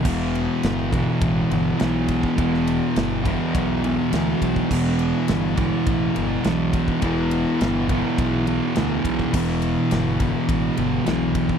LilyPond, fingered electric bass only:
\new Staff \with { instrumentName = "Fingered electric bass" } { \clef bass \time 4/4 \key e \minor \tempo 4 = 103 e,,4 g,,4 a,,8 g,,8 b,,4 | e,,4 g,,4 b,,4 d,8 b,,8 | e,,4 g,,4 a,,8 g,,8 b,,4 | e,,4 g,,4 b,,4 d,8 b,,8 |
e,,4 g,,4 a,,8 g,,8 b,,4 | }